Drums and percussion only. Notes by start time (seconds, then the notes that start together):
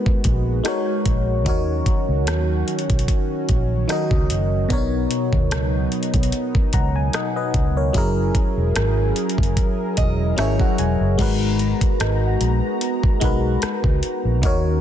0.06 kick
0.24 kick, closed hi-hat
0.65 cross-stick, closed hi-hat
1.06 kick, closed hi-hat
1.46 kick, closed hi-hat
1.86 kick, closed hi-hat
2.27 cross-stick, closed hi-hat
2.68 closed hi-hat
2.79 closed hi-hat
2.90 kick, closed hi-hat
2.99 closed hi-hat
3.08 kick, closed hi-hat
3.49 kick, closed hi-hat
3.89 cross-stick, closed hi-hat
4.11 kick
4.30 closed hi-hat
4.70 kick, closed hi-hat
5.11 closed hi-hat
5.33 kick
5.51 cross-stick, closed hi-hat
5.92 closed hi-hat
6.03 closed hi-hat
6.14 kick, closed hi-hat
6.23 closed hi-hat
6.32 closed hi-hat
6.55 kick
6.73 kick, closed hi-hat
7.13 cross-stick, closed hi-hat
7.54 kick, closed hi-hat
7.94 kick, closed hi-hat
8.35 kick, closed hi-hat
8.76 cross-stick, closed hi-hat
9.16 closed hi-hat
9.29 closed hi-hat
9.38 kick
9.43 closed hi-hat
9.57 kick, closed hi-hat
9.97 kick, closed hi-hat
10.38 cross-stick, closed hi-hat
10.60 kick
10.78 closed hi-hat
11.19 kick, closed hi-hat, crash
11.59 closed hi-hat
11.81 kick, closed hi-hat
12.00 cross-stick, closed hi-hat
12.41 closed hi-hat
12.81 closed hi-hat
13.03 kick
13.21 kick, closed hi-hat
13.62 cross-stick, closed hi-hat
13.84 kick
14.03 closed hi-hat
14.43 kick, closed hi-hat